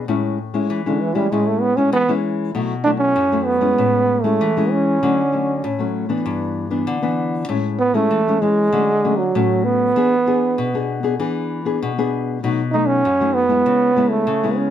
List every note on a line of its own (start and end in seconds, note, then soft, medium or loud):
0.08 0.67 A2 medium
0.08 0.37 G#3 medium
0.08 0.38 C#4 medium
0.08 0.38 E4 medium
0.54 0.80 G#3 medium
0.54 0.80 C#4 medium
0.54 0.80 E4 medium
0.70 1.29 E3 medium
0.86 1.02 D3 medium
0.86 1.12 G#3 medium
0.86 1.12 C#4 medium
0.86 1.12 E4 medium
1.00 1.16 E3 medium
1.15 1.34 G3 medium
1.15 1.26 G#3 medium
1.15 1.26 C#4 medium
1.15 1.26 E4 medium
1.32 1.91 A2 medium
1.32 1.73 G#3 medium
1.32 1.49 G#3 medium
1.32 1.73 C#4 medium
1.32 1.74 E4 medium
1.47 1.62 A3 medium
1.61 1.78 B3 loud
1.76 2.04 G#3 medium
1.76 1.92 C#4 loud
1.76 2.04 C#4 medium
1.76 2.04 E4 medium
1.93 2.52 E3 medium
1.93 2.12 B3 loud
2.08 2.50 G#3 medium
2.08 2.50 C#4 medium
2.08 2.50 E4 medium
2.55 3.14 B2 medium
2.55 2.73 F#3 medium
2.55 2.74 A3 medium
2.55 2.74 E4 medium
2.84 3.27 F#3 medium
2.84 3.27 A3 medium
2.84 2.91 D4 loud
2.84 3.27 E4 medium
2.98 3.47 C#4 loud
3.16 3.75 F#2 medium
3.32 3.58 F#3 medium
3.32 3.58 A3 medium
3.32 3.59 E4 medium
3.45 4.24 B3 loud
3.61 4.19 G#3 medium
3.61 4.19 C#4 medium
3.61 4.19 E4 medium
3.78 4.37 A2 medium
4.22 4.51 G#3 medium
4.22 4.72 A3 medium
4.22 4.51 C#4 medium
4.22 4.51 E4 medium
4.41 4.99 E3 medium
4.57 4.98 G#3 medium
4.57 4.98 C#4 medium
4.57 4.98 E4 medium
4.71 5.94 C#4 medium
5.03 5.61 D3 medium
5.03 5.21 F#3 medium
5.03 5.21 A3 medium
5.03 5.21 C#4 medium
5.32 5.62 F#3 medium
5.32 5.62 A3 medium
5.32 5.62 C#4 medium
5.64 6.23 A2 medium
5.79 6.05 F#3 medium
5.79 6.06 A3 medium
5.79 6.06 C#4 medium
6.09 6.66 E3 medium
6.09 6.67 B3 medium
6.09 6.67 D4 medium
6.26 6.84 G2 medium
6.70 6.97 E3 medium
6.70 6.97 B3 medium
6.70 6.97 D4 medium
6.87 7.46 D3 medium
7.02 7.44 E3 medium
7.02 7.44 B3 medium
7.02 7.44 D4 medium
7.49 8.08 A2 medium
7.49 7.78 G#3 medium
7.49 7.78 C#4 medium
7.49 7.78 E4 medium
7.79 7.96 B3 loud
7.94 8.21 G#3 medium
7.94 8.42 A3 loud
7.94 8.21 C#4 medium
7.94 8.21 E4 medium
8.11 8.69 E3 medium
8.28 8.37 G#3 medium
8.28 8.38 C#4 medium
8.28 8.38 E4 medium
8.41 9.18 G#3 loud
8.41 8.70 G#3 medium
8.41 8.70 C#4 medium
8.41 8.70 E4 medium
8.72 9.31 D3 medium
8.72 8.91 F#3 soft
8.72 8.91 A3 medium
8.72 8.91 C#4 medium
9.04 9.22 F#3 medium
9.04 9.22 A3 medium
9.04 9.22 C#4 medium
9.17 9.65 F#3 medium
9.35 9.93 A2 medium
9.35 9.91 F#3 medium
9.35 9.91 A3 medium
9.35 9.91 C#4 medium
9.64 10.87 B3 medium
9.96 10.54 E3 medium
9.96 10.14 B3 medium
9.96 10.14 D4 medium
9.96 10.15 G#4 medium
10.26 10.68 B3 medium
10.26 10.68 D4 medium
10.26 10.68 G#4 medium
10.58 11.16 B2 medium
10.74 10.99 B3 medium
10.74 10.99 D4 medium
10.74 11.00 G#4 medium
11.03 11.14 B3 medium
11.03 11.14 D4 medium
11.03 11.14 G#4 medium
11.20 11.78 E3 medium
11.20 11.60 B3 medium
11.20 11.60 D4 medium
11.20 11.61 G#4 medium
11.65 11.91 B3 medium
11.65 11.91 D4 medium
11.65 11.91 G#4 medium
11.82 12.40 B2 medium
11.98 12.38 B3 medium
11.98 12.38 D4 medium
11.98 12.38 G#4 medium
12.43 13.01 B2 medium
12.43 12.61 F#3 medium
12.43 12.61 A3 medium
12.43 12.61 D#4 medium
12.72 13.02 F#3 medium
12.72 13.02 A3 medium
12.72 12.88 D#4 loud
12.72 13.02 D#4 medium
12.86 13.35 C#4 loud
13.05 13.63 F#2 medium
13.21 13.46 F#3 medium
13.21 13.46 A3 medium
13.21 13.46 D#4 medium
13.34 14.12 B3 loud
13.49 13.90 G#3 medium
13.49 13.91 B3 medium
13.49 13.91 E4 medium
13.66 14.24 C#3 medium
13.96 14.25 G#3 medium
13.96 14.25 B3 medium
13.96 14.26 E4 medium
14.10 14.58 A3 medium
14.27 14.70 C#3 medium
14.43 14.69 G#3 medium
14.43 14.69 B3 medium
14.43 14.69 E4 medium
14.56 14.70 C#4 medium